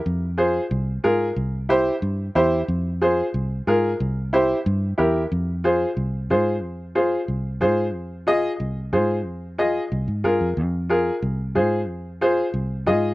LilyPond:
<<
  \new Staff \with { instrumentName = "Upright piano" } { \time 4/4 \key f \minor \tempo 4 = 183 r4 <f' aes' c''>8 r4. <f' aes' bes'>8 r8 | r4 <e' g' c''>8 r4. <e' g' c''>8 r8 | r4 <f' aes' c''>8 r4. <f' aes' bes'>8 r8 | r4 <e' g' c''>8 r4. <e' g' bes'>8 r8 |
r4 <f' aes' c''>8 r4. <f' aes' c''>8 r8 | r4 <f' aes' c''>8 r4. <f' aes' c''>8 r8 | r4 <f' aes' ees''>8 r4. <f' aes' c''>8 r8 | r4 <f' aes' ees''>8 r4. <f' aes' bes'>8 r8 |
r4 <f' aes' bes'>8 r4. <f' aes' c''>8 r8 | r4 <f' aes' c''>8 r4. <f' aes' ees''>8 r8 | }
  \new Staff \with { instrumentName = "Fingered electric bass" } { \clef bass \time 4/4 \key f \minor f,2 c,4 aes,4 | c,2 g,4 e,4 | f,2 c,4 aes,4 | c,2 g,4 e,4 |
f,2 c,4 aes,4 | f,2 c,4 aes,4 | f,2 c,4 aes,4 | f,2 c,8 aes,8 g,8 f,8 |
f,2 c,4 aes,4 | f,2 c,4 aes,4 | }
>>